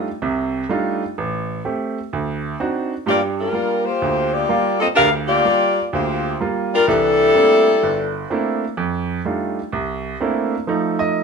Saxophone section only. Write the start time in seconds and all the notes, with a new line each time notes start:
3.08 A#3 F4 G4 D5
3.40 G3 D4 F4 A#4
3.85 A#3 F4 G4 C5
4.32 A#3 F4 G4 D5
4.80 C4 F4 A4 D#5
4.95 D4 G4 A#4 F5
5.28 A#3 F4 G4 D5
5.93 A#3 F4 G4 C5
6.74 G3 D4 F4 A#4
6.89 G3 D4 E4 A4